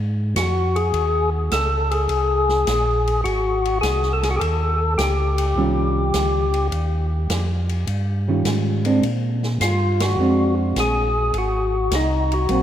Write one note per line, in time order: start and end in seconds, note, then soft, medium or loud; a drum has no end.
0.00 0.35 G#2 medium
0.36 0.92 F2 medium
0.36 0.77 F#4 medium
0.36 kick soft
0.36 snare medium
0.36 hi-hat pedal medium
0.36 ride medium
0.76 1.30 G#4 medium
0.76 ride soft
0.94 1.50 D#2 medium
0.94 kick soft
0.94 ride medium
1.51 2.08 C#2 medium
1.51 1.93 A4 loud
1.51 kick soft
1.51 snare medium
1.51 hi-hat pedal soft
1.51 ride medium
1.91 3.21 G#4 loud
1.91 ride soft
2.09 2.65 C2 medium
2.09 kick soft
2.09 ride medium
2.49 snare soft
2.67 3.24 A#1 medium
2.67 kick soft
2.67 snare medium
2.67 hi-hat pedal medium
2.67 ride medium
3.07 ride soft
3.24 3.81 G#1 medium
3.24 3.78 F#4 medium
3.24 kick soft
3.24 ride medium
3.65 ride soft
3.81 4.39 C2 medium
3.81 4.12 G#4 medium
3.81 kick soft
3.81 snare medium
3.81 hi-hat pedal medium
3.81 ride medium
4.03 snare soft
4.13 4.24 A4 medium
4.23 4.30 G#4 medium
4.23 snare soft
4.23 ride medium
4.30 4.36 F#4 medium
4.36 4.41 G4 medium
4.36 4.41 G#4 medium
4.36 4.94 A4 medium
4.41 4.97 D#2 medium
4.41 kick soft
4.41 ride medium
4.98 5.55 C#2 medium
4.98 6.68 G4 medium
4.98 kick soft
4.98 snare medium
4.98 hi-hat pedal medium
4.98 ride medium
5.38 ride medium
5.56 6.12 C2 medium
5.56 6.46 D#3 medium
5.56 6.47 G3 medium
5.56 6.47 C#4 medium
5.56 6.47 F4 medium
5.56 kick soft
6.14 6.70 C#2 medium
6.14 kick soft
6.14 snare medium
6.14 hi-hat pedal medium
6.14 ride medium
6.54 ride soft
6.71 7.28 D#2 medium
6.71 kick soft
6.71 ride medium
7.29 7.85 F2 medium
7.29 kick soft
7.29 snare medium
7.29 hi-hat pedal medium
7.29 ride medium
7.69 ride soft
7.87 8.43 G2 medium
7.87 kick soft
7.87 ride medium
8.28 8.81 D#3 medium
8.28 8.81 G3 medium
8.28 8.82 C#4 medium
8.28 8.82 F4 medium
8.45 9.01 G#2 medium
8.45 kick soft
8.45 snare medium
8.45 hi-hat pedal medium
8.45 ride medium
8.85 9.01 G#3 medium
8.85 9.02 C4 medium
8.85 9.02 D4 medium
8.85 ride medium
9.02 9.59 A#2 medium
9.02 kick soft
9.02 ride medium
9.43 snare soft
9.60 10.16 G2 medium
9.60 10.02 F4 medium
9.60 kick soft
9.60 snare medium
9.60 hi-hat pedal medium
9.60 ride medium
10.00 10.55 F#4 medium
10.00 snare medium
10.00 ride medium
10.18 10.74 F2 medium
10.18 11.09 G#3 medium
10.18 11.09 C4 medium
10.18 11.09 D4 medium
10.76 11.32 A#1 medium
10.76 11.37 G#4 loud
10.76 kick soft
10.76 snare medium
10.76 hi-hat pedal soft
10.76 ride medium
11.33 11.90 G#1 medium
11.33 kick soft
11.33 ride soft
11.38 11.95 F#4 medium
11.91 12.47 C2 medium
11.91 kick soft
11.91 snare medium
11.91 hi-hat pedal medium
11.91 ride medium
11.95 12.34 D#4 medium
12.32 12.62 F#4 loud
12.32 ride soft
12.49 12.62 A#1 medium
12.49 12.62 F#3 medium
12.49 12.62 A#3 medium
12.49 12.62 C4 medium
12.49 kick soft
12.49 ride medium